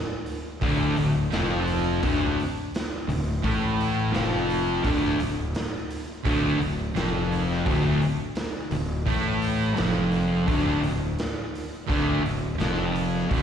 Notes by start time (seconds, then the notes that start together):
0.26 open hi-hat
0.61 D1 D2 D3, kick, open hi-hat
0.97 D1 D2, open hi-hat
1.32 F1 F2 F3, snare, open hi-hat
1.67 open hi-hat
2.03 D1 D2 D3, kick, open hi-hat
2.39 open hi-hat
2.74 snare, open hi-hat
3.08 D1 D2, open hi-hat
3.44 A1 A2 A3, kick, open hi-hat
3.80 open hi-hat
4.12 F1 F2 F3, snare, open hi-hat
4.50 open hi-hat
4.84 D1 D2 D3, kick, open hi-hat
5.19 D1 D2, open hi-hat
5.55 snare, open hi-hat
5.90 open hi-hat
6.25 D1 D2 D3, kick, open hi-hat
6.59 D1 D2, open hi-hat
6.95 F1 F2 F3, snare, open hi-hat
7.32 open hi-hat
7.51 snare
7.66 D1 D2 D3, kick, open hi-hat
8.01 open hi-hat
8.35 snare, open hi-hat
8.71 D1 D2, open hi-hat
9.06 A1 A2 A3, kick, open hi-hat
9.42 open hi-hat
9.77 F1 F2 F3, snare, open hi-hat
10.12 open hi-hat
10.47 D1 D2 D3, kick, open hi-hat
10.82 D1 D2, open hi-hat
11.18 snare, open hi-hat
11.55 open hi-hat
11.88 D1 D2 D3, kick, open hi-hat
12.24 D1 D2, open hi-hat
12.58 F1 F2 F3, snare, open hi-hat
12.95 open hi-hat
13.15 snare
13.30 D1 D2 D3, kick, open hi-hat